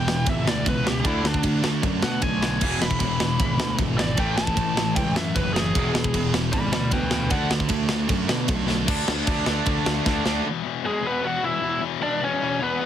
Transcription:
Already playing: E1 E2 B2 E3 G5
0.08 E2 B2, snare
0.26 G#1 E2 B2 E5, kick, ride
0.46 D2 E2 B2 D5, snare
0.65 C#2 E2 B2 B4, kick, ride
0.84 E2 B2 E3 G4, snare
0.89 E2
1.04 D2 D3 A3 D4 E4, kick, ride
1.23 D2 D3 A3 D4, snare
1.34 kick
1.43 D2 D3 A3, kick, ride
1.64 D3 A3, snare
1.82 F#2 D3 A3, kick, ride
2.02 B2 D3 A3 F#5, snare
2.22 B1 D3 A3 G#5, kick, ride
2.41 D3 A3 D4, snare
2.46 D3
2.61 E1 E2 B2 E3, kick, crash
2.81 E1 E2 B2 B5, snare
2.91 kick
3.00 E1 E2 B2 B5, kick, ride
3.19 E2 B2, snare
3.38 G#1 E2 B2, kick, ride
3.58 D2 E2 B2, snare
3.78 G#1 E2 B2, kick, ride
3.97 E2 B2 E3 D5, snare
4.17 A1 A2 E3 A3 G5, kick, ride
4.35 A1 A2 E3 A5, snare
4.47 kick
4.55 A1 A2 E3, kick, ride
4.74 A2 E3, snare
4.79 E3
4.93 C#2 A2 E3 G5, kick, ride
4.98 A2
5.14 F#2 A2 E3 E5, snare
5.34 F#1 A2 E3 B4, kick, ride
5.53 A2 E3 A3 G#4, snare
5.58 A2
5.74 E1 E2 B2 E3, kick, ride
5.94 E1 E2 B2, snare
6.04 kick
6.13 E1 E2 B2, kick, ride
6.32 E2 B2, snare
6.52 G#1 E2 B2 D5 B5, kick, ride
6.72 D2 E2 B2 D5 B5, snare
6.91 D2 E2 B2 B4 G5, kick, ride
7.11 E2 B2 E3 B4 G5, snare
7.15 E2
7.29 D2 D3 A3 D4 F#5, kick, ride
7.50 D2 D3 A3, snare
7.60 kick
7.69 D2 D3 A3, kick, ride
7.89 D3 A3, snare
8.08 F#2 D3 A3, kick, ride
8.28 B2 D3 A3, snare
8.48 B1 D3 A3, kick, ride
8.67 D3 A3 D4, snare
8.71 D3
8.86 D2 D3 A3 D4, kick, crash
9.08 D2, snare
9.25 D2 D3 A3 D4, kick, crash
9.45 D2 D3 A3 D4, snare
9.64 D2 D3 A3 D4, kick, crash
9.86 D2, snare
10.05 D2 D3 A3 D4, kick, snare
10.24 D2 D3 A3 D4, snare
10.43 E2 B2 E3
10.64 E2 B2 E3
10.83 E2 B2 E3 G#3 G#4
11.01 E2 B2 E3
11.07 B3 B4
11.22 E2 B2 E3 F#4
11.27 F#5
11.43 E2 B2 E3 E4 E5
11.61 E2 B2 E3
11.80 E2 B2 E3
12.00 E2 B2 E3 D4 D5
12.21 E2 B2 E3 C#4 C#5
12.41 E2 B2 E3
12.60 E2 B2 E3 B3 B4
12.79 E2 B2 E3

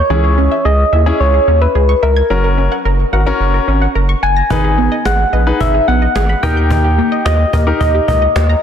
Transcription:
Already playing: C#5
0.10 C#2 E3 C#4 E4 G#4
0.24 G#4
0.38 C#4
0.51 E5
0.65 C#2 G#4 D#5
0.93 D#2 E4 G#4 E5
1.06 C#4 E4 G#4
1.20 C#2 C#5
1.34 G#4
1.48 D#2 C#4
1.62 B4 E5
1.75 C#2 G#4
1.89 C#6
2.03 C#2 A#4 E5
2.16 G#6
2.30 F#1 F#3 C#4 F#4 A#4
2.44 A#4
2.58 C#4
2.72 F#5
2.85 F#1 A#4
3.13 G#1 F#4 A#4 F#5
3.26 C#4 F#4 A#4
3.40 F#1
3.54 A#4
3.68 G#1 C#4
3.82 F#5
3.95 F#1 A#4
4.09 C#6
4.23 F#1 F#5 G#5
4.37 A#6
4.50 G#1 D#3 D#4 G#4 B4, cajon bass
4.64 G#4
4.78 B3
4.92 D#5
5.05 G#1 G#4 F#5, cajon slap
5.33 A#1 G#4 B4 D#5
5.47 D#4 G#4 B4
5.60 G#1 E5, cajon bass
5.74 G#4
5.88 A#1 B3 F#5
6.02 D#5
6.16 G#1 G#4, cajon slap
6.29 B5
6.43 D#2 D#4 G4 A#4 D#5 G5, cajon bass
6.57 G6
6.71 D#3, cajon bass
6.84 G4
6.98 A#3
7.12 D#5
7.25 D#2 G4 D#5, cajon slap
7.53 D#2 G4 A#4 D#5, cajon bass
7.67 D#4 G4 A#4
7.80 D#2 D#5, cajon bass
7.95 G4
8.08 C#2 A#3 D#5, cajon bass
8.22 D#5
8.36 D#2 G4, cajon slap
8.49 A#5

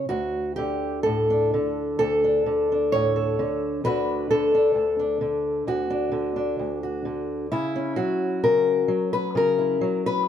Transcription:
0.09 D2 F#4
0.56 D3 G4
1.03 A2 A4
1.30 D4
1.54 D3
1.99 D2 A4
2.24 D4
2.46 D3
2.72 D4
2.92 A2 C#5
3.16 A4
3.39 D3
3.84 D2 D3 D4 F#4 B4
4.31 D3 A4
4.55 D4
4.75 D2
4.99 D4
5.21 D3
5.67 D2 F#4
5.90 D4
6.12 D3
6.36 D4
6.59 D2
6.83 F#4
7.05 D3
7.52 C#3 E4
7.76 C#4
7.96 F#3 F#4
8.44 C#3 A#4
8.88 F#3
9.13 B4
9.35 C#3 A#4
9.58 E4
9.81 F#3
10.06 B4

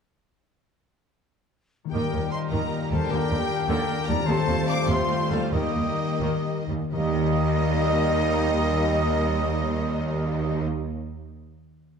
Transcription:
1.84 D#3 A#3 D#4
1.89 A#3 D#4 G4 A#4 G5
1.93 D#2 A#2 D#3 G3 A#3 G4 A#4
2.13 D#2 D#3
2.31 C5 D#5 C6
2.50 D#2 D#3 A#4 D#5 A#5
2.91 D#2 D#3 G3 A4 C5 A5
2.97 A#3
3.02 D4
3.06 G4 G5
3.10 D#2 D3 D4 G4 A#4
3.31 D#2 D3
3.68 D#2 D3 G4 A#4 G5
4.06 D#2 D#3 G3 A#4 D5 A#5
4.14 C4
4.18 F4
4.23 G4 C5
4.27 D#2 C3 F3 G3 A3 C4 F4 G4 A4 C5 A5
4.48 D#2 F3
4.67 D5 F5 D6
4.87 D#2 C3 C5 F5 C6
5.30 D#2 G3 F4 A4 F5
5.35 D#3
5.39 A#3
5.44 D#4
5.48 A#3 G4
5.52 D#2 D#3 A#3 D#4 G4 D#5
5.75 D#2 D#3
6.20 D#2 D#3
6.68 D#2 G3
6.92 D#2 D#3 G3 A#3 D#4 G4 D#5
6.96 D#3 G3
7.01 A#3
7.08 D#4
7.15 G4
7.21 D#5

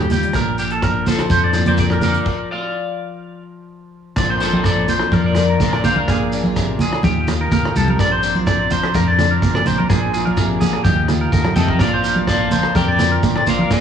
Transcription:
Already playing: D#2 D#3 G3 G4
0.10 F4 G4, closed hi-hat, low conga, shekere
0.23 closed hi-hat
0.33 A#1 A#2 A#4, kick, cross-stick, closed hi-hat, shekere
0.38 A#4
0.58 G4, closed hi-hat, shekere
0.70 A4, closed hi-hat
0.82 F3 D4 A#4, kick, cross-stick, closed hi-hat, shekere
1.06 F4 A4 C5, closed hi-hat, high conga, low conga, shekere
1.19 cross-stick, closed hi-hat
1.29 F2 C5, kick, closed hi-hat, shekere
1.44 D5
1.53 A#2 F4, cross-stick, closed hi-hat, shekere
1.66 A#4 C5 D5, closed hi-hat, high conga, low conga
1.78 D5, kick, closed hi-hat, shekere
1.82 A#4
1.90 A#4, cross-stick
2.01 D4 A#4 D5, closed hi-hat, low conga, shekere
2.14 closed hi-hat
2.26 kick, crash
2.51 D5 F5
4.16 A#1 A#2 F3 A#3 C4 D4 F4 D5, muted nylon-string guitar stroke, kick, cross-stick, crash, shekere
4.30 C5
4.40 F4 A4 C5, closed hi-hat, shekere
4.53 high conga
4.64 D5, kick, cross-stick, shekere
4.88 F3 C5, closed hi-hat, low conga, shekere
5.00 cross-stick
5.11 F2 A#4 D5, kick, high conga, shekere
5.26 D5
5.35 cross-stick, closed hi-hat, low conga, shekere
5.39 F4
5.50 A#4
5.60 A#1 A#2 A#4 D5, kick, low conga, shekere
5.73 D5, cross-stick
5.84 A#1 C5 D5 F5, closed hi-hat, low conga, shekere
5.96 A#4, high conga
6.08 A#1 A#2 A#3 G#4, kick, cross-stick, shekere
6.32 D4, closed hi-hat, shekere
6.44 F4, high conga
6.56 C3, kick, cross-stick, shekere
6.79 D3 G#4, closed hi-hat, low conga, shekere
6.92 cross-stick
7.02 D#2 D#4 F4 G4, muted nylon-string guitar stroke, kick, high conga, shekere
7.28 F4, cross-stick, closed hi-hat, low conga, shekere
7.41 A#4
7.51 D#2 A#4, kick, low conga, shekere
7.65 cross-stick
7.75 C2 G3 A4, closed hi-hat, low conga, shekere
7.88 A#4, high conga
7.99 A#1 C4 D4 A#4 D5, muted nylon-string guitar stroke, kick, cross-stick, shekere
8.12 C5
8.22 D4, closed hi-hat, shekere
8.35 F4, high conga
8.47 D5, kick, cross-stick, shekere
8.71 F3 C5, closed hi-hat, low conga, shekere
8.83 cross-stick
8.94 F2 A#4, kick, high conga, shekere
9.08 D5
9.19 D4, cross-stick, closed hi-hat, low conga, shekere
9.31 A#4
9.42 A#1 A#2, kick, low conga, shekere
9.55 D5, cross-stick
9.66 A#1 C5, closed hi-hat, low conga, shekere
9.78 A#4, high conga
9.90 A#1 A#2 A#3 G#4, kick, cross-stick, shekere
10.14 F4 G#4, closed hi-hat, shekere
10.25 A#4, high conga
10.37 C3, kick, cross-stick, shekere
10.61 D3 G#4, closed hi-hat, high conga, low conga, shekere
10.73 cross-stick
10.84 D#2 D#3 D#4 F4 G4, kick, high conga, shekere
11.08 F4, cross-stick, closed hi-hat, low conga, shekere
11.21 A#4
11.32 D#2 D3 A#4, kick, low conga, shekere
11.45 cross-stick, high conga
11.56 F2 C3 A4 D#5 G5, closed hi-hat, low conga, shekere
11.68 A#4, kick, high conga
11.79 A#1 A#2 F3 C4 D4 F4 A#4 D5 F5, kick, cross-stick, shekere
11.93 C5
12.04 F4, closed hi-hat, shekere
12.16 high conga
12.27 D5 F5 A5, kick, cross-stick, shekere
12.51 F3 C5, closed hi-hat, low conga, shekere
12.63 cross-stick
12.75 F2 A#4 D5 G5, kick, high conga, shekere
12.88 D5
12.99 F4, cross-stick, closed hi-hat, low conga, shekere
13.12 A#4
13.23 A#1 A#2, kick, low conga, shekere
13.36 D5, cross-stick
13.47 A#1 C5 D5 F5, closed hi-hat, low conga, shekere
13.59 A#4, high conga
13.71 A#1 A#2 A#3 D4 G#4 A#4 D5, kick, cross-stick, shekere

